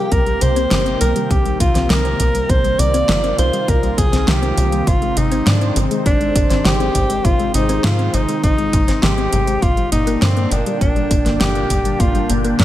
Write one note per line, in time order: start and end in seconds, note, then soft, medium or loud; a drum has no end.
0.00 9.58 C3 medium
0.00 4.83 A#3 medium
0.00 0.13 G4 medium
0.00 2.45 G4 medium
0.12 0.37 C2 loud
0.12 0.23 C3 loud
0.12 9.58 D#3 medium
0.12 9.58 C4 medium
0.12 0.43 A#4 loud
0.12 kick loud
0.12 closed hi-hat medium
0.26 0.38 G3 medium
0.26 closed hi-hat soft
0.41 0.67 C2 medium
0.41 0.52 C3 loud
0.41 1.00 C5 loud
0.41 closed hi-hat loud
0.56 0.63 C4 loud
0.56 closed hi-hat medium
0.71 0.96 G1 loud
0.71 0.85 C3 medium
0.71 snare loud
0.71 closed hi-hat medium
0.86 1.00 C4 medium
0.86 closed hi-hat soft
1.01 1.14 C2 loud
1.01 1.12 C3 medium
1.01 1.32 A#4 loud
1.01 closed hi-hat loud
1.16 1.27 G3 medium
1.16 closed hi-hat medium
1.30 1.56 C2 loud
1.30 1.42 C3 loud
1.30 1.60 G4 loud
1.30 kick loud
1.30 closed hi-hat medium
1.45 1.56 G3 medium
1.45 closed hi-hat soft
1.60 1.73 C2 loud
1.60 1.71 C3 loud
1.60 1.92 F4 medium
1.60 kick loud
1.60 closed hi-hat medium
1.75 1.88 C2 medium
1.75 1.82 C4 loud
1.75 snare soft
1.75 closed hi-hat medium
1.90 2.15 C2 loud
1.90 2.04 C3 medium
1.90 2.51 A#4 loud
1.90 snare loud
1.90 closed hi-hat medium
2.05 2.19 C4 medium
2.05 closed hi-hat soft
2.20 2.45 C2 medium
2.20 2.31 C3 medium
2.20 kick medium
2.20 closed hi-hat loud
2.34 2.45 G3 medium
2.34 closed hi-hat medium
2.49 2.74 C2 loud
2.49 2.60 C3 loud
2.49 4.85 F4 medium
2.49 2.81 C5 loud
2.49 kick loud
2.49 closed hi-hat medium
2.64 2.75 G3 medium
2.64 closed hi-hat soft
2.79 3.04 C2 loud
2.79 2.90 C3 loud
2.79 3.38 D5 loud
2.79 closed hi-hat loud
2.94 3.00 C4 loud
2.94 closed hi-hat medium
3.09 3.34 G1 loud
3.09 3.23 C3 medium
3.09 snare loud
3.09 closed hi-hat medium
3.24 3.38 C4 medium
3.24 closed hi-hat soft
3.38 3.51 C2 loud
3.38 3.49 C3 medium
3.38 3.70 C5 loud
3.38 closed hi-hat loud
3.53 3.64 G3 medium
3.53 closed hi-hat medium
3.68 3.93 C2 medium
3.68 3.79 C3 loud
3.68 4.00 A#4 loud
3.68 kick loud
3.68 closed hi-hat medium
3.83 3.94 G3 medium
3.83 closed hi-hat soft
3.98 4.10 C2 loud
3.98 4.09 C3 loud
3.98 4.30 G#4 medium
3.98 kick loud
3.98 closed hi-hat medium
4.13 4.25 C2 medium
4.13 4.19 C4 loud
4.13 snare soft
4.13 closed hi-hat medium
4.28 4.53 C2 loud
4.28 4.42 C3 medium
4.28 4.89 G4 loud
4.28 snare loud
4.28 closed hi-hat medium
4.42 4.57 C4 medium
4.42 closed hi-hat soft
4.57 4.82 C2 loud
4.57 4.68 C3 medium
4.57 closed hi-hat loud
4.72 4.83 G3 medium
4.72 closed hi-hat medium
4.87 5.12 G#1 loud
4.87 4.98 C3 loud
4.87 9.58 G#3 medium
4.87 5.19 F4 loud
4.87 9.58 C5 medium
4.87 kick loud
4.87 closed hi-hat medium
5.02 5.13 G#3 medium
5.02 closed hi-hat soft
5.17 5.42 G#1 loud
5.17 5.28 C3 loud
5.17 5.49 D#4 medium
5.17 closed hi-hat medium
5.32 5.38 C4 loud
5.32 closed hi-hat medium
5.46 5.71 G#2 loud
5.46 5.61 C3 medium
5.46 5.76 D4 medium
5.46 snare loud
5.46 closed hi-hat medium
5.61 5.75 C4 medium
5.61 closed hi-hat soft
5.76 5.89 G#1 loud
5.76 5.87 C3 medium
5.76 closed hi-hat loud
5.91 6.02 G#3 medium
5.91 closed hi-hat medium
6.06 6.31 G#1 loud
6.06 6.17 C3 loud
6.06 6.67 D4 loud
6.06 kick loud
6.06 closed hi-hat medium
6.21 6.32 G#3 medium
6.21 closed hi-hat soft
6.36 6.48 G#1 loud
6.36 6.47 C3 loud
6.36 kick loud
6.36 closed hi-hat medium
6.50 6.63 G#1 medium
6.50 6.57 C4 loud
6.50 snare soft
6.50 closed hi-hat medium
6.65 6.90 G#1 loud
6.65 6.79 C3 medium
6.65 7.26 G4 loud
6.65 snare loud
6.65 closed hi-hat medium
6.80 6.94 C4 medium
6.80 closed hi-hat soft
6.95 7.20 G#1 loud
6.95 7.06 C3 medium
6.95 kick medium
6.95 closed hi-hat loud
7.10 7.21 G#3 medium
7.10 closed hi-hat medium
7.25 7.50 G#1 loud
7.25 7.36 C3 loud
7.25 7.54 F4 loud
7.25 kick loud
7.25 closed hi-hat medium
7.39 7.50 G#3 medium
7.39 closed hi-hat soft
7.54 7.79 G#1 medium
7.54 7.65 C3 loud
7.54 7.86 D#4 loud
7.54 closed hi-hat medium
7.69 7.76 C4 loud
7.69 closed hi-hat medium
7.84 8.09 G#2 loud
7.84 7.98 C3 medium
7.84 8.15 F4 loud
7.84 snare loud
7.84 closed hi-hat medium
7.99 8.13 C4 medium
7.99 closed hi-hat soft
8.14 8.26 G#1 loud
8.14 8.25 C3 medium
8.14 8.43 D#4 loud
8.14 closed hi-hat medium
8.29 8.40 G#3 medium
8.29 closed hi-hat medium
8.43 8.69 G#1 loud
8.43 8.54 C3 loud
8.43 9.04 D#4 loud
8.43 kick loud
8.43 closed hi-hat medium
8.58 8.69 G#3 medium
8.58 closed hi-hat soft
8.73 8.86 G#1 loud
8.73 8.84 C3 loud
8.73 kick loud
8.73 closed hi-hat medium
8.88 9.01 G#1 medium
8.88 8.95 C4 loud
8.88 snare soft
8.88 closed hi-hat medium
9.03 9.28 G#1 medium
9.03 9.17 C3 medium
9.03 9.64 G4 loud
9.03 snare loud
9.03 closed hi-hat medium
9.18 9.32 C4 medium
9.18 closed hi-hat soft
9.33 9.58 G#1 loud
9.33 9.44 C3 medium
9.33 closed hi-hat medium
9.47 9.58 G#3 medium
9.47 closed hi-hat medium
9.62 9.87 G1 loud
9.62 9.73 A#2 loud
9.62 12.65 A#2 medium
9.62 12.65 D3 medium
9.62 12.65 A#3 medium
9.62 12.65 D4 medium
9.62 9.91 F4 loud
9.62 12.65 G5 medium
9.62 kick loud
9.62 closed hi-hat medium
9.77 9.88 G3 medium
9.77 closed hi-hat soft
9.92 10.17 G1 loud
9.92 10.03 A#2 loud
9.92 10.23 D#4 loud
9.92 closed hi-hat medium
10.07 10.13 A#3 loud
10.07 closed hi-hat soft
10.22 10.47 G2 loud
10.22 10.36 A#2 medium
10.22 10.53 C4 medium
10.22 snare loud
10.22 closed hi-hat soft
10.37 10.51 A#3 medium
10.37 closed hi-hat soft
10.51 10.64 G1 loud
10.51 10.62 A#2 medium
10.51 10.81 D4 medium
10.51 closed hi-hat medium
10.66 10.77 G3 medium
10.66 closed hi-hat medium
10.81 11.06 G1 medium
10.81 10.92 A#2 loud
10.81 11.37 D4 medium
10.81 kick loud
10.81 closed hi-hat medium
10.96 11.07 G3 medium
10.96 closed hi-hat soft
11.11 11.23 G1 medium
11.11 11.22 A#2 loud
11.11 kick loud
11.11 closed hi-hat medium
11.26 11.38 G1 medium
11.26 11.32 A#3 loud
11.26 snare soft
11.26 closed hi-hat soft
11.41 11.66 G1 loud
11.41 11.55 A#2 medium
11.41 12.02 G4 loud
11.41 snare loud
11.41 closed hi-hat soft
11.55 11.70 A#3 medium
11.55 closed hi-hat soft
11.70 11.95 G1 loud
11.70 11.81 A#2 medium
11.70 kick medium
11.70 closed hi-hat medium
11.85 11.96 G3 medium
11.85 closed hi-hat soft
12.00 12.25 G1 loud
12.00 12.11 A#2 loud
12.00 12.30 F4 medium
12.00 kick loud
12.00 closed hi-hat medium
12.15 12.26 G3 medium
12.15 closed hi-hat soft
12.30 12.55 G1 loud
12.30 12.41 A#2 loud
12.30 closed hi-hat medium
12.44 12.51 A#3 loud
12.44 closed hi-hat soft
12.59 12.65 G2 medium
12.59 12.65 A#2 medium
12.59 12.65 D4 loud
12.59 snare loud
12.59 closed hi-hat soft